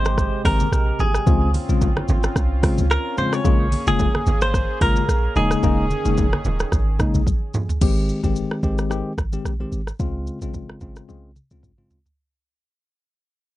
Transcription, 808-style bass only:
0.00 0.29 G#1 medium
0.45 0.64 G#1 loud
0.72 0.92 A#1 loud
0.99 1.19 G#1 medium
1.27 1.57 C#2 loud
1.69 1.97 A#1 medium
2.09 2.28 G#1 medium
2.36 2.66 C2 loud
2.78 2.98 C#2 medium
3.45 3.75 A#1 loud
3.87 4.07 F1 medium
4.27 4.66 G#1 medium
4.81 5.01 G#1 loud
5.09 5.28 A#1 loud
5.36 5.55 D#1 loud
5.63 5.93 D#1 loud
6.06 6.34 F1 medium
6.45 6.65 D#1 medium
6.72 7.03 G#1 loud
7.14 7.34 A#1 medium
7.81 8.12 G#1 loud
8.24 8.43 G1 medium
8.63 9.02 G#1 medium
9.18 9.37 G#1 medium
9.45 9.65 A#1 medium
9.72 9.92 G#1 medium
10.00 10.30 C#2 loud
10.42 10.70 A#1 medium
10.81 11.01 G#1 medium
11.09 11.39 C2 medium
11.51 11.71 C#2 medium

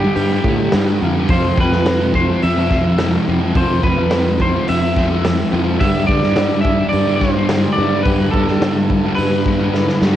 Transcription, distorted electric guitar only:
0.03 0.33 D3 medium
0.03 0.31 G3 medium
0.32 0.46 D3 medium
0.32 0.47 G3 medium
0.46 0.73 G2 medium
0.46 0.63 D3 medium
0.46 0.60 G3 medium
0.61 0.74 D3 medium
0.61 0.76 G3 medium
0.74 1.01 G2 medium
0.74 1.02 D3 medium
0.74 1.03 G3 medium
1.02 1.28 G2 medium
1.02 1.18 D3 medium
1.02 1.16 G3 medium
1.17 1.30 D3 medium
1.17 1.29 G3 medium
1.30 1.58 F2 medium
1.30 1.58 C3 medium
1.30 1.60 F3 medium
1.58 1.86 F2 medium
1.58 1.74 C3 medium
1.58 1.72 F3 medium
1.72 1.87 C3 medium
1.72 1.89 F3 medium
1.87 2.70 F2 medium
1.87 2.01 C3 medium
1.87 2.00 F3 loud
2.00 2.31 C3 medium
2.00 2.28 F3 medium
2.30 2.58 C3 medium
2.30 2.56 F3 medium
2.58 2.71 C3 medium
2.58 2.72 F3 medium
2.71 2.98 F2 medium
2.71 2.86 C3 medium
2.71 2.83 F3 medium
2.85 2.99 C3 medium
2.85 3.00 F3 medium
2.99 3.25 F2 loud
2.99 3.26 C3 loud
2.99 3.27 F3 loud
3.26 3.53 F2 medium
3.26 3.42 C3 medium
3.26 3.39 F3 medium
3.41 3.55 C3 medium
3.41 3.56 F3 medium
3.55 3.82 F2 medium
3.55 3.83 C3 medium
3.55 3.84 F3 medium
3.83 4.11 F2 medium
3.83 3.98 C3 medium
3.83 3.96 F3 medium
3.97 4.11 C3 medium
3.97 4.13 F3 medium
4.12 4.54 F2 medium
4.12 4.27 C3 loud
4.12 4.24 F3 loud
4.26 4.55 C3 soft
4.26 4.52 F3 medium
4.53 4.82 C3 medium
4.53 4.80 F3 medium
4.81 4.96 C3 medium
4.81 4.97 F3 medium
4.96 5.23 F2 medium
4.96 5.10 C3 medium
4.96 5.09 F3 medium
5.10 5.24 C3 medium
5.10 5.25 F3 medium
5.24 5.51 F2 loud
5.24 5.52 C3 loud
5.24 5.54 F3 loud
5.52 5.79 F2 medium
5.52 5.67 C3 medium
5.52 5.65 F3 medium
5.66 5.80 C3 medium
5.66 5.79 F3 medium
5.80 6.08 G2 medium
5.80 6.09 D3 medium
5.80 6.11 G3 medium
6.09 6.35 G2 medium
6.09 6.23 D3 medium
6.09 6.22 G3 medium
6.22 6.36 D3 medium
6.22 6.38 G3 medium
6.36 7.20 G2 medium
6.36 6.51 D3 loud
6.36 6.50 G3 loud
6.51 6.79 D3 medium
6.51 6.77 G3 medium
6.78 7.07 D3 medium
6.78 7.05 G3 medium
7.06 7.21 D3 medium
7.06 7.21 G3 medium
7.21 7.48 G2 medium
7.21 7.35 D3 medium
7.21 7.34 G3 medium
7.35 7.49 D3 medium
7.35 7.50 G3 medium
7.49 7.76 G2 loud
7.49 7.77 D3 loud
7.49 7.78 G3 loud
7.77 8.04 G2 medium
7.77 7.92 D3 medium
7.77 7.89 G3 medium
7.91 8.05 D3 medium
7.91 8.06 G3 medium
8.05 8.33 G2 medium
8.05 8.35 D3 medium
8.05 8.35 G3 medium
8.34 8.60 G2 medium
8.34 8.49 D3 medium
8.34 8.47 G3 medium
8.48 8.62 D3 medium
8.48 8.63 G3 medium
8.61 9.04 G2 medium
8.61 8.77 D3 medium
8.61 8.74 G3 loud
8.75 9.06 D3 medium
8.75 9.04 G3 medium
9.05 9.34 D3 medium
9.05 9.31 G3 medium
9.32 9.46 D3 medium
9.32 9.47 G3 medium
9.46 9.72 G2 medium
9.46 9.61 D3 medium
9.46 9.59 G3 medium
9.60 9.74 D3 medium
9.60 9.75 G3 medium
9.73 10.00 G2 medium
9.73 10.02 D3 medium
9.73 10.03 G3 medium
10.02 10.16 G2 medium
10.02 10.16 D3 medium
10.02 10.14 G3 medium

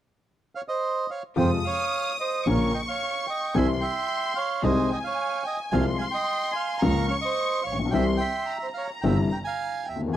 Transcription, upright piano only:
1.36 1.60 F2 medium
1.36 1.60 C3 medium
1.36 1.60 F3 medium
1.36 1.60 G#3 medium
1.36 1.60 F4 medium
2.47 2.70 A#1 medium
2.47 2.70 A#2 medium
2.47 2.70 C#3 medium
2.47 2.70 F3 medium
2.47 2.70 A#3 medium
2.47 2.70 F4 medium
3.54 3.78 C2 medium
3.54 3.78 C3 medium
3.54 3.78 E3 medium
3.54 3.78 G3 medium
3.54 3.78 E4 medium
4.62 4.86 C2 medium
4.62 4.87 C3 medium
4.62 4.87 D#3 medium
4.62 4.87 G#3 medium
4.62 4.87 D#4 medium
5.72 5.96 C2 medium
5.72 5.96 C3 medium
5.72 5.96 F3 medium
5.72 5.96 G#3 medium
5.72 5.96 F4 medium
6.82 7.06 C#2 medium
6.82 7.06 C#3 medium
6.82 7.06 F3 medium
6.82 7.06 A#3 medium
6.82 7.06 F4 medium
7.72 7.79 A1 soft
7.79 7.86 A#1 soft
7.85 7.93 B1 medium
7.93 8.16 C2 medium
7.93 8.16 C3 medium
7.93 8.16 E3 medium
7.93 8.16 G3 medium
7.93 8.16 E4 medium
9.04 9.27 G1 medium
9.04 9.27 G2 medium
9.04 9.27 C3 medium
9.04 9.27 E3 medium
9.04 9.27 G3 medium
9.04 9.27 E4 medium
9.96 10.02 D2 soft
10.02 10.09 D#2 soft
10.08 10.15 E2 medium

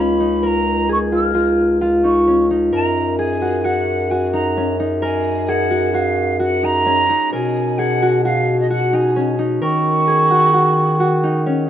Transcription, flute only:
0.00 0.47 B5 medium
0.46 0.90 A#5 medium
0.92 0.98 C#6 medium
1.14 1.78 F6 medium
2.04 2.46 C#6 medium
2.73 3.16 A#5 medium
3.18 3.65 G#5 medium
3.64 4.12 F#5 medium
4.10 4.32 G#5 medium
4.33 4.76 A#5 medium
5.03 5.50 G#5 medium
5.49 5.96 F#5 medium
5.95 6.40 F5 medium
6.42 6.66 F#5 medium
6.64 7.33 A#5 medium
7.33 7.79 G#5 medium
7.78 8.24 F#5 medium
8.24 8.56 F5 medium
8.59 8.70 D#5 medium
8.70 8.96 F#5 medium
8.94 9.36 G#5 medium
9.62 11.42 C#6 loud

